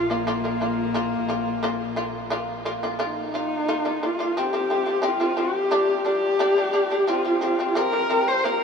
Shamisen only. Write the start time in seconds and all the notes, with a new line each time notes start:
0.10 A#3 F4
0.27 A#3 F4
0.44 A#3 F4
0.61 A#3 F4
0.94 A#3 F4
1.29 A#3 F4
1.63 A#3 F4
1.96 A#3 F4
2.30 A#3 F4
2.65 A#3 F4
2.83 A#3 F4
2.99 A#3 F4
3.34 A#3 F4
3.68 A#3 F4
3.85 A#3 F4
4.03 A#3 F4
4.19 A#3 F4
4.37 F3 C4
4.53 F3 C4
4.70 F3 C4
4.86 F3 C4
5.02 F3 C4
5.20 F3 C4
5.37 F3 C4
5.71 G3 D4
6.05 G3 D4
6.39 G3 D4
6.57 G3 D4
6.73 G3 D4
6.91 G3 D4
7.07 F3 C4
7.25 F3 C4
7.41 F3 C4
7.59 F3 C4
7.75 F3 C4
7.92 F3 C4
8.10 F3 C4
8.45 A#3 F4